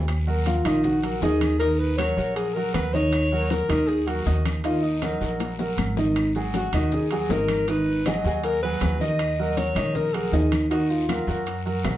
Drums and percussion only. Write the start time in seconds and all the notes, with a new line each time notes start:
0.08 high bongo, high conga, high timbale, long guiro, claves, maracas
0.28 high conga
0.46 high bongo, high conga, high timbale, short guiro, maracas
0.65 high conga, low conga, high timbale, short guiro, claves, maracas
0.83 high bongo, high conga, low conga, long guiro, maracas
1.02 high conga, high timbale, maracas
1.22 high bongo, low bongo, high conga, low timbale, short guiro, maracas
1.41 high conga, high timbale, short guiro, claves, maracas
1.60 high bongo, high conga, high timbale, long guiro, maracas
1.80 high bongo, high conga
1.98 high bongo, high conga, high timbale, short guiro, claves, maracas
2.17 short guiro, maracas
2.36 high bongo, high conga, high timbale, long guiro, maracas
2.55 high bongo, high conga
2.74 high bongo, low bongo, high conga, high timbale, short guiro, claves, maracas
2.93 high bongo, high conga, short guiro, maracas
3.12 high bongo, high conga, high timbale, long guiro, claves, maracas
3.50 high bongo, high conga, high timbale, short guiro, maracas
3.70 high conga, low conga, high timbale, short guiro, claves, maracas
3.88 high bongo, high conga, long guiro, maracas
4.08 high conga, high timbale
4.26 high bongo, low bongo, high conga, short guiro, maracas
4.45 high conga, high timbale, short guiro, claves, maracas
4.64 high bongo, high conga, high timbale, long guiro, maracas
4.83 high bongo, high conga, maracas
5.02 high bongo, high conga, high timbale, short guiro, claves, maracas
5.21 high conga, short guiro, maracas
5.40 high bongo, high conga, high timbale, long guiro, maracas
5.59 low bongo, high conga, maracas
5.77 low bongo, high conga, high timbale, short guiro, claves, maracas
5.97 low bongo, high conga, short guiro, maracas
6.16 high bongo, high timbale, long guiro, claves, maracas
6.35 high conga, maracas
6.54 high bongo, high conga, high timbale, short guiro, maracas
6.73 high conga, low conga, high timbale, short guiro, claves, maracas
6.91 high bongo, high conga, low conga, long guiro, maracas
7.11 high conga, high timbale, maracas
7.30 high bongo, low bongo, high conga, low timbale, short guiro, maracas
7.49 high conga, high timbale, short guiro, claves, maracas
7.68 high bongo, high timbale, long guiro, maracas
7.87 high bongo, high conga
8.05 high bongo, high conga, high timbale, short guiro, claves, maracas
8.24 high conga, short guiro, maracas
8.43 high bongo, high conga, high timbale, long guiro, maracas
8.62 high bongo, high conga
8.81 high bongo, low bongo, high conga, high timbale, low timbale, short guiro, claves, maracas
9.00 high bongo, high conga, short guiro, maracas
9.19 high bongo, high conga, high timbale, long guiro, claves, maracas
9.38 high conga
9.57 high bongo, high conga, high timbale, short guiro, maracas
9.76 high conga, low conga, high timbale, short guiro, claves, maracas
9.95 high bongo, high conga, low conga, long guiro, maracas
10.14 high conga, high timbale
10.33 high bongo, low bongo, high conga, low timbale, short guiro, maracas
10.52 high conga, high timbale, short guiro, claves, maracas
10.71 high bongo, high timbale, long guiro, maracas
10.90 high bongo, high conga, maracas
11.08 high bongo, high conga, high timbale, short guiro, claves, maracas
11.27 high conga, short guiro, maracas
11.46 high bongo, high conga, high timbale, long guiro, maracas
11.66 high bongo, high conga, maracas
11.84 high bongo, low bongo, high conga, high timbale, low timbale, short guiro, claves, maracas